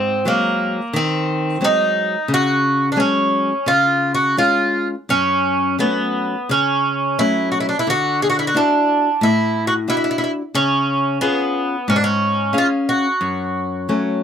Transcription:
Already playing: nylon-string guitar G#2, bouzouki C4
0.25 nylon-string guitar F#3 G#3 C4, bouzouki A#3
0.93 nylon-string guitar D#3, bouzouki C4
1.61 nylon-string guitar F#3 G#3 C4, bouzouki D#4
2.28 nylon-string guitar C#3
2.34 bouzouki F#4
2.92 bouzouki D4
2.96 nylon-string guitar F#3 G#3 C#4, bouzouki C#4
3.66 nylon-string guitar C#3, bouzouki F4
4.15 bouzouki F#4
4.37 nylon-string guitar G#3 C#4 F4, bouzouki F4
5.09 nylon-string guitar F#2, bouzouki C#4
5.79 nylon-string guitar F#3 A3 C#4, bouzouki B3
6.49 nylon-string guitar C#3, bouzouki C#4
7.19 nylon-string guitar F#3 A3 C#4, bouzouki E4
7.52 bouzouki F#4
7.60 bouzouki E4
7.69 bouzouki D4
7.79 bouzouki E4
7.87 nylon-string guitar D3, bouzouki F#4
8.22 bouzouki G#4
8.30 bouzouki F#4
8.39 bouzouki E4
8.47 bouzouki F#4
8.54 nylon-string guitar D4 E4 F#4, bouzouki D4
9.21 nylon-string guitar A2, bouzouki E4
9.67 bouzouki F#4
9.88 nylon-string guitar D4 E4 F#4, bouzouki E4
9.97 bouzouki E4
10.04 bouzouki E4
10.11 bouzouki E4
10.18 bouzouki E4
10.24 bouzouki E4
10.54 nylon-string guitar C#3, bouzouki C#4
11.21 bouzouki B3, nylon-string guitar C#4 F4 G#4
11.88 nylon-string guitar G#2, bouzouki C#4
11.96 bouzouki D4
12.04 bouzouki C#4
12.53 nylon-string guitar C#4 G#4 F5
12.58 bouzouki F4
12.89 bouzouki F#4
13.21 nylon-string guitar F#2
13.89 nylon-string guitar F#3 A3 C#4

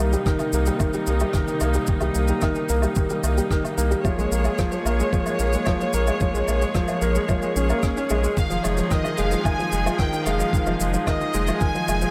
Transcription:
Already playing: string section C3 A#3 D#4, felt piano G3
0.00 analog synth bass C2, felt piano A#3
0.13 felt piano G3, shaker
0.26 felt piano D#3, kick, cross-stick, shaker
0.39 felt piano D#3, low woodblock, shaker
0.53 analog synth bass C2, felt piano A#3, shaker
0.66 felt piano G3, shaker
0.80 felt piano D#3, kick, low woodblock, shaker
0.93 felt piano G3, shaker
1.07 analog synth bass C2, felt piano A#3, shaker
1.20 felt piano G3, low woodblock, shaker
1.33 felt piano D#3, kick, cross-stick, shaker
1.48 felt piano D#3, shaker
1.60 analog synth bass C2, felt piano A#3, low woodblock, shaker
1.74 felt piano G3, shaker
1.87 felt piano D#3, kick, shaker
2.00 analog synth bass C2, felt piano G3, low woodblock, shaker
2.15 analog synth bass C2, felt piano A#3, shaker
2.28 felt piano G3, shaker
2.41 felt piano D#3, kick, cross-stick, low woodblock, shaker
2.55 felt piano D#3, shaker
2.69 analog synth bass C2, felt piano A#3, shaker
2.82 felt piano G3, low woodblock, shaker
2.96 felt piano D#3, kick, shaker
3.10 felt piano G3, shaker
3.24 analog synth bass C2, felt piano A#3, low woodblock, shaker
3.38 felt piano G3, shaker
3.51 felt piano D#3, kick, cross-stick, shaker
3.64 felt piano D#3, low woodblock, shaker
3.77 analog synth bass C2, felt piano A#3, shaker
3.91 felt piano G3, shaker
4.05 felt piano F3, string section G#4 C#5, kick, low woodblock, shaker
4.18 analog synth bass A#1, felt piano G#3, shaker
4.32 analog synth bass A#1, felt piano A#3, shaker
4.45 felt piano G#3, low woodblock, shaker
4.58 felt piano F3, kick, cross-stick, shaker
4.72 felt piano F3, shaker
4.85 analog synth bass A#1, felt piano A#3, low woodblock, shaker
5.00 felt piano G#3, shaker
5.13 felt piano F3, kick, shaker
5.26 felt piano G#3, low woodblock, shaker
5.39 analog synth bass A#1, felt piano A#3, shaker
5.53 felt piano G#3, shaker
5.66 felt piano F3, kick, cross-stick, low woodblock, shaker
5.80 felt piano F3, shaker
5.93 analog synth bass A#1, felt piano A#3, shaker
6.07 felt piano G#3, low woodblock, shaker
6.20 felt piano F3, kick, shaker
6.34 analog synth bass A#1, felt piano G#3, shaker
6.48 analog synth bass A#1, felt piano A#3, low woodblock, shaker
6.62 felt piano G#3, shaker
6.75 felt piano F3, kick, cross-stick, shaker
6.88 felt piano F3, low woodblock, shaker
7.02 analog synth bass A#1, felt piano A#3, shaker
7.15 felt piano G#3, shaker
7.29 felt piano F3, kick, low woodblock, shaker
7.42 felt piano G#3, shaker
7.56 analog synth bass A#1, felt piano C#4, shaker
7.70 felt piano A#3, low woodblock, shaker
7.83 felt piano C#4, kick, cross-stick, shaker
7.97 felt piano C#4, shaker
8.10 analog synth bass A#1, felt piano G#3, low woodblock, shaker
8.23 felt piano G#3, shaker
8.37 felt piano D#3, string section F3 D#4, violin section F5, kick, shaker
8.50 analog synth bass F1, felt piano F3, shaker
8.63 analog synth bass F1, felt piano G#3, violin section C#5, low woodblock, shaker
8.77 felt piano F3, shaker
8.91 felt piano D#3, violin section D#5, kick, cross-stick, shaker
9.04 felt piano D#3, low woodblock, shaker
9.17 analog synth bass F1, felt piano G#3, violin section F5, shaker
9.31 felt piano F3, shaker
9.43 felt piano D#3, violin section G#5, kick, low woodblock, shaker
9.60 felt piano F3, shaker
9.72 analog synth bass F1, felt piano G#3, shaker
9.86 felt piano F3, low woodblock, shaker
9.98 felt piano D#3, violin section G5, kick, cross-stick, shaker
10.13 felt piano D#3, shaker
10.26 analog synth bass F1, felt piano G#3, violin section F5, low woodblock, shaker
10.40 felt piano F3, shaker
10.53 felt piano D#3, kick, shaker
10.66 analog synth bass F1, felt piano F3, low woodblock, shaker
10.80 analog synth bass F1, felt piano G#3, shaker
10.94 felt piano F3, shaker
11.07 felt piano D#3, violin section D#5, kick, cross-stick, low woodblock, shaker
11.21 felt piano D#3, shaker
11.34 analog synth bass F1, felt piano G#3, shaker
11.47 felt piano F3, low woodblock, shaker
11.61 felt piano D#3, violin section G#5, kick, shaker
11.75 felt piano F3, shaker
11.88 analog synth bass F1, felt piano G#3, low woodblock, shaker
12.02 felt piano F3, shaker

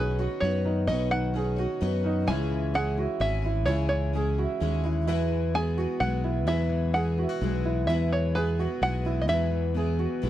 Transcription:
Already playing: fingered electric bass B1, felt piano B1 B2 B3 D#4 F#4 C#5, steel-string acoustic guitar D#3 C#4, twelve-string acoustic guitar B3 D#4 F#4 C#5, upright piano G#4, five-string banjo B4
0.19 twelve-string acoustic guitar D#4 F#4 C#5, steel-string acoustic guitar F#4, upright piano F#4
0.40 fingered electric bass F#2, twelve-string acoustic guitar B3 D#4 F#4, felt piano B3 D#4 F#4 C#5, steel-string acoustic guitar B3, five-string banjo C#5
0.45 twelve-string acoustic guitar C#5
0.65 steel-string acoustic guitar D#3, upright piano D#4
0.87 fingered electric bass B1, felt piano B1 B2 B3 D#4 F#4 C#5, steel-string acoustic guitar B2, twelve-string acoustic guitar B3 D#4 F#4 C#5, upright piano D#4, five-string banjo D#5
1.11 steel-string acoustic guitar D#3, five-string banjo F#5
1.34 twelve-string acoustic guitar B3 D#4 F#4 C#5, felt piano B3 D#4 F#4 C#5, steel-string acoustic guitar C#4, upright piano G#4
1.56 twelve-string acoustic guitar D#4 F#4 C#5, steel-string acoustic guitar F#4, upright piano F#4
1.81 fingered electric bass F#2, twelve-string acoustic guitar B3 D#4 F#4 C#5, steel-string acoustic guitar B3, felt piano B3 D#4 F#4 C#5
2.04 steel-string acoustic guitar D#3, upright piano D#4
2.27 fingered electric bass C#2, felt piano C#2 C#3 G#3 C#4 E4 C#5, steel-string acoustic guitar C#3 E3 G#3 C#4 E4, twelve-string acoustic guitar C#3 G#3 C#4 E4 G#4, upright piano E4, five-string banjo G#5
2.50 steel-string acoustic guitar E3
2.74 twelve-string acoustic guitar G#3 C#4 E4 G#4, felt piano G#3 C#4 E4 C#5, steel-string acoustic guitar C#4, upright piano G#4, five-string banjo F#5
2.98 steel-string acoustic guitar E4, upright piano F#4
3.20 fingered electric bass G#1, twelve-string acoustic guitar G#3 C#4 E4 G#4, felt piano G#3 C#4 E4 C#5, steel-string acoustic guitar G#3, five-string banjo E5
3.42 steel-string acoustic guitar E3, twelve-string acoustic guitar C#4 E4 G#4, upright piano E4
3.66 fingered electric bass C#2, felt piano C#2 C#3 G#3 C#4 E4 C#5, twelve-string acoustic guitar C#3 G#3 C#4 E4 G#4, steel-string acoustic guitar C#3, upright piano E4, five-string banjo C#5
3.89 steel-string acoustic guitar E3, five-string banjo C#5
4.13 felt piano G#3 C#4 E4 E5, twelve-string acoustic guitar G#3 C#4 E4 G#4, steel-string acoustic guitar C#4, upright piano G#4
4.38 steel-string acoustic guitar E4, upright piano F#4
4.60 fingered electric bass D#2, felt piano G#3 C#4 E4 F#4 E5, twelve-string acoustic guitar G#3 C#4 E4 G#4, steel-string acoustic guitar G#3
4.72 felt piano G#5
4.83 steel-string acoustic guitar E3, twelve-string acoustic guitar C#4 E4 G#4, upright piano E4
5.07 steel-string acoustic guitar E2, twelve-string acoustic guitar E2 E3 F#3 B3 E4 G#4, fingered electric bass E2, felt piano E2 E3 G#3 E4 F#4 B4, upright piano E4
5.31 steel-string acoustic guitar E3
5.54 twelve-string acoustic guitar F#3 B3 E4 G#4, felt piano G#3 E4 F#4 B4, steel-string acoustic guitar B3, upright piano G#4, five-string banjo G#5
5.77 twelve-string acoustic guitar F#3 B3 E4 G#4, upright piano F#4, steel-string acoustic guitar F#4
6.00 fingered electric bass B1, twelve-string acoustic guitar F#3 B3 E4 G#4, steel-string acoustic guitar G#3, felt piano G#3 E4 F#4 B4, five-string banjo F#5
6.24 steel-string acoustic guitar E3, upright piano E4
6.46 steel-string acoustic guitar E2, fingered electric bass E2, twelve-string acoustic guitar E2 E3 F#3 B3 E4 G#4, felt piano E2 E3 G#3 E4 F#4 B4, upright piano E4, five-string banjo E5
6.69 steel-string acoustic guitar E3
6.93 twelve-string acoustic guitar F#3 B3 E4 G#4, felt piano G#3 E4 F#4 B4, steel-string acoustic guitar B3, upright piano G#4, five-string banjo F#5
7.18 steel-string acoustic guitar E4, upright piano F#4
7.29 steel-string acoustic guitar F#4
7.41 fingered electric bass B1, twelve-string acoustic guitar F#3 B3 E4 G#4, steel-string acoustic guitar G#3, felt piano G#3 E4 F#4 B4
7.65 steel-string acoustic guitar E3, upright piano E4
7.87 twelve-string acoustic guitar E2 E3 F#3 B3 E4 G#4, fingered electric bass E2, steel-string acoustic guitar E2, felt piano E2 E3 G#3 E4 F#4 B4, upright piano E4, five-string banjo E5
8.12 steel-string acoustic guitar E3, five-string banjo C#5
8.35 twelve-string acoustic guitar F#3 B3 E4 G#4, felt piano G#3 E4 F#4 B4, steel-string acoustic guitar B3, upright piano G#4, five-string banjo B4
8.59 twelve-string acoustic guitar F#3 B3 E4 G#4, upright piano F#4, steel-string acoustic guitar F#4
8.81 fingered electric bass B1, twelve-string acoustic guitar F#3 B3 E4 G#4, steel-string acoustic guitar G#3, felt piano G#3 E4 F#4 B4, five-string banjo F#5
9.04 steel-string acoustic guitar E3, twelve-string acoustic guitar F#3 B3 E4 G#4, upright piano E4
9.21 five-string banjo D#5
9.27 steel-string acoustic guitar E2, twelve-string acoustic guitar E2 E3 F#3 B3 E4 G#4, fingered electric bass E2, felt piano E2 E3 G#3 E4 F#4 B4, upright piano E4, five-string banjo E5
9.51 steel-string acoustic guitar E3
9.74 twelve-string acoustic guitar F#3 B3 E4 G#4, felt piano G#3 E4 F#4 B4, steel-string acoustic guitar B3, upright piano G#4
9.99 steel-string acoustic guitar F#4, upright piano F#4
10.22 fingered electric bass B1, twelve-string acoustic guitar F#3 B3 E4 G#4, steel-string acoustic guitar G#3, felt piano G#3 E4 F#4 B4

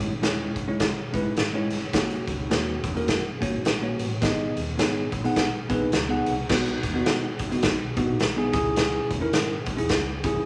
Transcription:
Already playing: tine electric piano C#5
0.00 fingered electric bass G#1, kick, closed hi-hat
0.22 fingered electric bass E1, tine electric piano G#3 C#4 E4 C#5, snare, closed hi-hat
0.56 fingered electric bass F#1, kick, closed hi-hat
0.68 tine electric piano G#3 C#4 E4 C#5
0.80 kick, snare, closed hi-hat
1.12 fingered electric bass G#1, tine electric piano G#3 C#4 E4 B4, kick, closed hi-hat
1.37 fingered electric bass G#1, snare, closed hi-hat
1.53 tine electric piano G#3 C#4 E4 C#5
1.70 fingered electric bass G1, snare, closed hi-hat
1.93 fingered electric bass F#1, tine electric piano A#3 C#4 F#4 C#5, kick, snare, closed hi-hat
2.10 closed hi-hat
2.27 fingered electric bass C#2, kick, closed hi-hat
2.50 fingered electric bass D#2, tine electric piano A#3 C#4 F#4 C#5, snare, closed hi-hat
2.84 fingered electric bass E2, kick, closed hi-hat
2.95 tine electric piano A#3 C#4 F#4 A#4, closed hi-hat
3.08 fingered electric bass F#2, kick, snare, closed hi-hat
3.41 tine electric piano A#3 C#4 F#4 C#5, kick, closed hi-hat
3.54 fingered electric bass G#2
3.65 fingered electric bass A#1, snare, closed hi-hat
3.82 tine electric piano A#3 C#4 F#4 C#5
3.99 fingered electric bass A1, closed hi-hat
4.22 fingered electric bass G#1, tine electric piano B3 D#4 G#4 D#5, kick, snare, closed hi-hat
4.56 fingered electric bass D#2, closed hi-hat
4.78 fingered electric bass G#1, tine electric piano B3 D#4 G#4 C#5, snare, closed hi-hat
5.12 fingered electric bass A#1, kick, closed hi-hat
5.24 tine electric piano B3 D#4 G#4 F#5, closed hi-hat
5.36 kick, snare, closed hi-hat
5.69 fingered electric bass B1, tine electric piano B3 D#4 G#4 B4, kick, closed hi-hat
5.92 fingered electric bass C#2, snare, closed hi-hat
6.09 tine electric piano B3 D#4 G#4 F#5
6.26 fingered electric bass C2, closed hi-hat
6.49 fingered electric bass B1, tine electric piano B3 D#4 F#4, kick, snare, crash
6.66 closed hi-hat
6.83 fingered electric bass D#2, kick, closed hi-hat
6.94 tine electric piano B3 D#4 F#4
7.06 fingered electric bass B2, snare, closed hi-hat
7.39 fingered electric bass F#1, kick, closed hi-hat
7.51 tine electric piano B3 D#4 F#4, closed hi-hat
7.62 fingered electric bass B1, kick, snare, closed hi-hat
7.97 tine electric piano B3 D#4 F#4, kick, closed hi-hat
8.09 fingered electric bass A#1
8.20 fingered electric bass B1, snare, closed hi-hat
8.36 tine electric piano B3 D#4 G#4
8.52 fingered electric bass C#2, tine electric piano C#4 E4 G#4, kick, snare, closed hi-hat
8.76 snare, closed hi-hat
9.11 fingered electric bass E1, kick, closed hi-hat
9.20 tine electric piano C#4 E4 A#4
9.33 fingered electric bass G#1, snare, closed hi-hat
9.66 kick, closed hi-hat
9.77 fingered electric bass E2, tine electric piano C#4 E4 G#4, closed hi-hat
9.89 fingered electric bass C#2, kick, snare, closed hi-hat
10.24 tine electric piano C#4 E4 G#4, kick, closed hi-hat
10.36 fingered electric bass F#2

